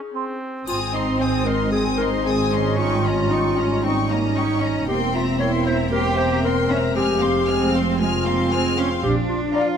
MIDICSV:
0, 0, Header, 1, 11, 480
1, 0, Start_track
1, 0, Key_signature, -4, "major"
1, 0, Tempo, 525855
1, 621, Time_signature, 4, 2, 24, 8
1, 4933, Tempo, 519481
1, 8971, End_track
2, 0, Start_track
2, 0, Title_t, "Flute section"
2, 0, Program_c, 0, 73
2, 137, Note_on_c, 0, 84, 35
2, 224, Note_off_c, 0, 84, 0
2, 8971, End_track
3, 0, Start_track
3, 0, Title_t, "Violin section"
3, 0, Program_c, 1, 48
3, 616, Note_on_c, 1, 87, 43
3, 842, Note_off_c, 1, 87, 0
3, 856, Note_on_c, 1, 84, 39
3, 1096, Note_on_c, 1, 87, 39
3, 1099, Note_off_c, 1, 84, 0
3, 1331, Note_on_c, 1, 84, 43
3, 1339, Note_off_c, 1, 87, 0
3, 1573, Note_on_c, 1, 87, 41
3, 1577, Note_off_c, 1, 84, 0
3, 1800, Note_off_c, 1, 87, 0
3, 1817, Note_on_c, 1, 84, 39
3, 2060, Note_off_c, 1, 84, 0
3, 2066, Note_on_c, 1, 87, 39
3, 2305, Note_off_c, 1, 87, 0
3, 2306, Note_on_c, 1, 84, 39
3, 2541, Note_on_c, 1, 85, 37
3, 2545, Note_off_c, 1, 84, 0
3, 2764, Note_off_c, 1, 85, 0
3, 2786, Note_on_c, 1, 82, 42
3, 3022, Note_on_c, 1, 85, 38
3, 3023, Note_off_c, 1, 82, 0
3, 3261, Note_off_c, 1, 85, 0
3, 3264, Note_on_c, 1, 82, 43
3, 3501, Note_off_c, 1, 82, 0
3, 3514, Note_on_c, 1, 85, 41
3, 3729, Note_off_c, 1, 85, 0
3, 3743, Note_on_c, 1, 82, 42
3, 3974, Note_on_c, 1, 85, 43
3, 3979, Note_off_c, 1, 82, 0
3, 4214, Note_off_c, 1, 85, 0
3, 4218, Note_on_c, 1, 82, 41
3, 4455, Note_on_c, 1, 84, 42
3, 4456, Note_off_c, 1, 82, 0
3, 4677, Note_off_c, 1, 84, 0
3, 4687, Note_on_c, 1, 82, 45
3, 4929, Note_off_c, 1, 82, 0
3, 4935, Note_on_c, 1, 84, 39
3, 5165, Note_on_c, 1, 82, 41
3, 5174, Note_off_c, 1, 84, 0
3, 5408, Note_off_c, 1, 82, 0
3, 5410, Note_on_c, 1, 84, 44
3, 5633, Note_off_c, 1, 84, 0
3, 5653, Note_on_c, 1, 82, 40
3, 5891, Note_off_c, 1, 82, 0
3, 5893, Note_on_c, 1, 84, 46
3, 6126, Note_on_c, 1, 82, 42
3, 6130, Note_off_c, 1, 84, 0
3, 6367, Note_off_c, 1, 82, 0
3, 6367, Note_on_c, 1, 89, 46
3, 6591, Note_off_c, 1, 89, 0
3, 6613, Note_on_c, 1, 84, 45
3, 6847, Note_on_c, 1, 89, 44
3, 6851, Note_off_c, 1, 84, 0
3, 7089, Note_off_c, 1, 89, 0
3, 7092, Note_on_c, 1, 84, 43
3, 7330, Note_on_c, 1, 89, 44
3, 7332, Note_off_c, 1, 84, 0
3, 7554, Note_off_c, 1, 89, 0
3, 7564, Note_on_c, 1, 84, 45
3, 7805, Note_on_c, 1, 89, 50
3, 7808, Note_off_c, 1, 84, 0
3, 8043, Note_on_c, 1, 84, 44
3, 8049, Note_off_c, 1, 89, 0
3, 8288, Note_off_c, 1, 84, 0
3, 8770, Note_on_c, 1, 82, 54
3, 8971, Note_off_c, 1, 82, 0
3, 8971, End_track
4, 0, Start_track
4, 0, Title_t, "Violin section"
4, 0, Program_c, 2, 48
4, 626, Note_on_c, 2, 80, 42
4, 848, Note_off_c, 2, 80, 0
4, 868, Note_on_c, 2, 75, 37
4, 1105, Note_off_c, 2, 75, 0
4, 1109, Note_on_c, 2, 80, 41
4, 1340, Note_on_c, 2, 75, 38
4, 1345, Note_off_c, 2, 80, 0
4, 1581, Note_off_c, 2, 75, 0
4, 1586, Note_on_c, 2, 80, 39
4, 1807, Note_off_c, 2, 80, 0
4, 1836, Note_on_c, 2, 75, 39
4, 2069, Note_off_c, 2, 75, 0
4, 2069, Note_on_c, 2, 80, 46
4, 2306, Note_off_c, 2, 80, 0
4, 2319, Note_on_c, 2, 75, 39
4, 2551, Note_off_c, 2, 75, 0
4, 2553, Note_on_c, 2, 79, 43
4, 2771, Note_off_c, 2, 79, 0
4, 2797, Note_on_c, 2, 75, 42
4, 3028, Note_off_c, 2, 75, 0
4, 3035, Note_on_c, 2, 79, 39
4, 3267, Note_off_c, 2, 79, 0
4, 3273, Note_on_c, 2, 75, 40
4, 3506, Note_off_c, 2, 75, 0
4, 3514, Note_on_c, 2, 79, 44
4, 3729, Note_off_c, 2, 79, 0
4, 3753, Note_on_c, 2, 75, 41
4, 3984, Note_off_c, 2, 75, 0
4, 3991, Note_on_c, 2, 79, 44
4, 4223, Note_off_c, 2, 79, 0
4, 4227, Note_on_c, 2, 75, 39
4, 4460, Note_off_c, 2, 75, 0
4, 4465, Note_on_c, 2, 79, 49
4, 4683, Note_off_c, 2, 79, 0
4, 4696, Note_on_c, 2, 76, 43
4, 4933, Note_off_c, 2, 76, 0
4, 4941, Note_on_c, 2, 79, 40
4, 5174, Note_on_c, 2, 76, 42
4, 5177, Note_off_c, 2, 79, 0
4, 5412, Note_on_c, 2, 79, 50
4, 5413, Note_off_c, 2, 76, 0
4, 5634, Note_off_c, 2, 79, 0
4, 5645, Note_on_c, 2, 76, 43
4, 5887, Note_off_c, 2, 76, 0
4, 5888, Note_on_c, 2, 79, 49
4, 6128, Note_off_c, 2, 79, 0
4, 6131, Note_on_c, 2, 76, 42
4, 6369, Note_off_c, 2, 76, 0
4, 6371, Note_on_c, 2, 80, 46
4, 6593, Note_off_c, 2, 80, 0
4, 6605, Note_on_c, 2, 77, 41
4, 6847, Note_on_c, 2, 80, 46
4, 6848, Note_off_c, 2, 77, 0
4, 7087, Note_on_c, 2, 77, 44
4, 7089, Note_off_c, 2, 80, 0
4, 7320, Note_on_c, 2, 80, 50
4, 7330, Note_off_c, 2, 77, 0
4, 7549, Note_off_c, 2, 80, 0
4, 7568, Note_on_c, 2, 77, 45
4, 7808, Note_on_c, 2, 80, 53
4, 7811, Note_off_c, 2, 77, 0
4, 8051, Note_off_c, 2, 80, 0
4, 8055, Note_on_c, 2, 77, 46
4, 8294, Note_off_c, 2, 77, 0
4, 8781, Note_on_c, 2, 77, 56
4, 8971, Note_off_c, 2, 77, 0
4, 8971, End_track
5, 0, Start_track
5, 0, Title_t, "Clarinet"
5, 0, Program_c, 3, 71
5, 0, Note_on_c, 3, 68, 59
5, 340, Note_off_c, 3, 68, 0
5, 620, Note_on_c, 3, 65, 63
5, 729, Note_off_c, 3, 65, 0
5, 856, Note_on_c, 3, 63, 44
5, 1086, Note_off_c, 3, 63, 0
5, 1092, Note_on_c, 3, 72, 60
5, 1326, Note_on_c, 3, 70, 64
5, 1340, Note_off_c, 3, 72, 0
5, 1564, Note_off_c, 3, 70, 0
5, 1569, Note_on_c, 3, 68, 59
5, 1680, Note_off_c, 3, 68, 0
5, 1802, Note_on_c, 3, 70, 65
5, 1915, Note_off_c, 3, 70, 0
5, 2046, Note_on_c, 3, 68, 59
5, 2525, Note_off_c, 3, 68, 0
5, 2536, Note_on_c, 3, 65, 70
5, 3509, Note_on_c, 3, 63, 56
5, 3523, Note_off_c, 3, 65, 0
5, 4447, Note_off_c, 3, 63, 0
5, 4452, Note_on_c, 3, 67, 58
5, 4560, Note_off_c, 3, 67, 0
5, 4696, Note_on_c, 3, 65, 54
5, 4803, Note_off_c, 3, 65, 0
5, 4925, Note_on_c, 3, 73, 64
5, 5035, Note_off_c, 3, 73, 0
5, 5170, Note_on_c, 3, 72, 58
5, 5278, Note_off_c, 3, 72, 0
5, 5409, Note_on_c, 3, 70, 61
5, 5517, Note_off_c, 3, 70, 0
5, 5641, Note_on_c, 3, 72, 72
5, 5879, Note_off_c, 3, 72, 0
5, 5893, Note_on_c, 3, 70, 69
5, 6360, Note_off_c, 3, 70, 0
5, 6372, Note_on_c, 3, 67, 74
5, 7062, Note_off_c, 3, 67, 0
5, 7330, Note_on_c, 3, 65, 64
5, 8256, Note_off_c, 3, 65, 0
5, 8283, Note_on_c, 3, 67, 76
5, 8393, Note_off_c, 3, 67, 0
5, 8523, Note_on_c, 3, 65, 58
5, 8634, Note_off_c, 3, 65, 0
5, 8766, Note_on_c, 3, 74, 76
5, 8876, Note_off_c, 3, 74, 0
5, 8971, End_track
6, 0, Start_track
6, 0, Title_t, "Cello section"
6, 0, Program_c, 4, 48
6, 622, Note_on_c, 4, 60, 50
6, 1546, Note_off_c, 4, 60, 0
6, 1584, Note_on_c, 4, 56, 46
6, 2063, Note_off_c, 4, 56, 0
6, 2067, Note_on_c, 4, 60, 48
6, 2140, Note_off_c, 4, 60, 0
6, 2305, Note_on_c, 4, 61, 49
6, 3007, Note_off_c, 4, 61, 0
6, 3018, Note_on_c, 4, 63, 46
6, 3091, Note_off_c, 4, 63, 0
6, 3256, Note_on_c, 4, 61, 45
6, 3492, Note_off_c, 4, 61, 0
6, 3502, Note_on_c, 4, 60, 48
6, 3575, Note_off_c, 4, 60, 0
6, 3736, Note_on_c, 4, 58, 47
6, 3971, Note_off_c, 4, 58, 0
6, 3975, Note_on_c, 4, 61, 50
6, 4444, Note_off_c, 4, 61, 0
6, 4452, Note_on_c, 4, 60, 49
6, 4921, Note_off_c, 4, 60, 0
6, 4928, Note_on_c, 4, 64, 55
6, 5400, Note_off_c, 4, 64, 0
6, 5414, Note_on_c, 4, 67, 59
6, 5881, Note_off_c, 4, 67, 0
6, 5886, Note_on_c, 4, 60, 48
6, 5960, Note_off_c, 4, 60, 0
6, 6126, Note_on_c, 4, 61, 53
6, 6200, Note_off_c, 4, 61, 0
6, 6363, Note_on_c, 4, 60, 56
6, 6437, Note_off_c, 4, 60, 0
6, 6604, Note_on_c, 4, 58, 51
6, 6678, Note_off_c, 4, 58, 0
6, 6845, Note_on_c, 4, 60, 50
6, 7319, Note_off_c, 4, 60, 0
6, 7323, Note_on_c, 4, 56, 51
6, 7565, Note_on_c, 4, 58, 49
6, 7568, Note_off_c, 4, 56, 0
6, 7804, Note_off_c, 4, 58, 0
6, 7811, Note_on_c, 4, 60, 56
6, 8048, Note_off_c, 4, 60, 0
6, 8052, Note_on_c, 4, 61, 54
6, 8126, Note_off_c, 4, 61, 0
6, 8293, Note_on_c, 4, 62, 62
6, 8764, Note_off_c, 4, 62, 0
6, 8773, Note_on_c, 4, 65, 59
6, 8971, Note_off_c, 4, 65, 0
6, 8971, End_track
7, 0, Start_track
7, 0, Title_t, "Oboe"
7, 0, Program_c, 5, 68
7, 128, Note_on_c, 5, 60, 42
7, 608, Note_off_c, 5, 60, 0
7, 8971, End_track
8, 0, Start_track
8, 0, Title_t, "Viola section"
8, 0, Program_c, 6, 48
8, 613, Note_on_c, 6, 60, 39
8, 841, Note_off_c, 6, 60, 0
8, 860, Note_on_c, 6, 63, 40
8, 1101, Note_off_c, 6, 63, 0
8, 1102, Note_on_c, 6, 60, 44
8, 1342, Note_off_c, 6, 60, 0
8, 1343, Note_on_c, 6, 63, 38
8, 1582, Note_on_c, 6, 60, 37
8, 1583, Note_off_c, 6, 63, 0
8, 1805, Note_off_c, 6, 60, 0
8, 1817, Note_on_c, 6, 63, 37
8, 2059, Note_on_c, 6, 60, 41
8, 2060, Note_off_c, 6, 63, 0
8, 2296, Note_on_c, 6, 63, 42
8, 2302, Note_off_c, 6, 60, 0
8, 2530, Note_off_c, 6, 63, 0
8, 2541, Note_on_c, 6, 63, 43
8, 2764, Note_off_c, 6, 63, 0
8, 2779, Note_on_c, 6, 61, 41
8, 3019, Note_off_c, 6, 61, 0
8, 3021, Note_on_c, 6, 63, 41
8, 3260, Note_off_c, 6, 63, 0
8, 3264, Note_on_c, 6, 61, 40
8, 3501, Note_off_c, 6, 61, 0
8, 3503, Note_on_c, 6, 63, 38
8, 3723, Note_off_c, 6, 63, 0
8, 3738, Note_on_c, 6, 61, 39
8, 3969, Note_on_c, 6, 63, 44
8, 3977, Note_off_c, 6, 61, 0
8, 4212, Note_off_c, 6, 63, 0
8, 4214, Note_on_c, 6, 61, 43
8, 4448, Note_on_c, 6, 58, 43
8, 4454, Note_off_c, 6, 61, 0
8, 4674, Note_off_c, 6, 58, 0
8, 4686, Note_on_c, 6, 60, 43
8, 4923, Note_on_c, 6, 58, 41
8, 4929, Note_off_c, 6, 60, 0
8, 5168, Note_off_c, 6, 58, 0
8, 5168, Note_on_c, 6, 60, 41
8, 5401, Note_on_c, 6, 58, 43
8, 5410, Note_off_c, 6, 60, 0
8, 5628, Note_off_c, 6, 58, 0
8, 5646, Note_on_c, 6, 60, 41
8, 5887, Note_off_c, 6, 60, 0
8, 5887, Note_on_c, 6, 58, 46
8, 6122, Note_on_c, 6, 60, 45
8, 6127, Note_off_c, 6, 58, 0
8, 6365, Note_off_c, 6, 60, 0
8, 6365, Note_on_c, 6, 56, 48
8, 6590, Note_off_c, 6, 56, 0
8, 6599, Note_on_c, 6, 60, 45
8, 6840, Note_on_c, 6, 56, 44
8, 6845, Note_off_c, 6, 60, 0
8, 7086, Note_off_c, 6, 56, 0
8, 7089, Note_on_c, 6, 60, 45
8, 7330, Note_off_c, 6, 60, 0
8, 7331, Note_on_c, 6, 56, 44
8, 7555, Note_off_c, 6, 56, 0
8, 7565, Note_on_c, 6, 60, 45
8, 7807, Note_on_c, 6, 56, 48
8, 7809, Note_off_c, 6, 60, 0
8, 8042, Note_on_c, 6, 60, 45
8, 8051, Note_off_c, 6, 56, 0
8, 8288, Note_off_c, 6, 60, 0
8, 8767, Note_on_c, 6, 62, 52
8, 8971, Note_off_c, 6, 62, 0
8, 8971, End_track
9, 0, Start_track
9, 0, Title_t, "French horn section"
9, 0, Program_c, 7, 60
9, 619, Note_on_c, 7, 60, 48
9, 626, Note_on_c, 7, 56, 48
9, 2506, Note_off_c, 7, 60, 0
9, 2509, Note_off_c, 7, 56, 0
9, 2546, Note_on_c, 7, 61, 52
9, 2549, Note_on_c, 7, 55, 51
9, 4419, Note_off_c, 7, 61, 0
9, 4457, Note_off_c, 7, 55, 0
9, 4458, Note_on_c, 7, 58, 50
9, 4462, Note_on_c, 7, 60, 52
9, 6214, Note_off_c, 7, 58, 0
9, 6371, Note_on_c, 7, 56, 51
9, 8258, Note_off_c, 7, 56, 0
9, 8260, Note_off_c, 7, 60, 0
9, 8288, Note_on_c, 7, 53, 57
9, 8289, Note_on_c, 7, 62, 57
9, 8971, Note_off_c, 7, 53, 0
9, 8971, Note_off_c, 7, 62, 0
9, 8971, End_track
10, 0, Start_track
10, 0, Title_t, "Double bass section"
10, 0, Program_c, 8, 48
10, 613, Note_on_c, 8, 32, 47
10, 4414, Note_off_c, 8, 32, 0
10, 4448, Note_on_c, 8, 28, 51
10, 6364, Note_on_c, 8, 29, 48
10, 6365, Note_off_c, 8, 28, 0
10, 8284, Note_on_c, 8, 34, 58
10, 8292, Note_off_c, 8, 29, 0
10, 8668, Note_off_c, 8, 34, 0
10, 8971, End_track
11, 0, Start_track
11, 0, Title_t, "Drums"
11, 616, Note_on_c, 9, 81, 34
11, 707, Note_off_c, 9, 81, 0
11, 8971, End_track
0, 0, End_of_file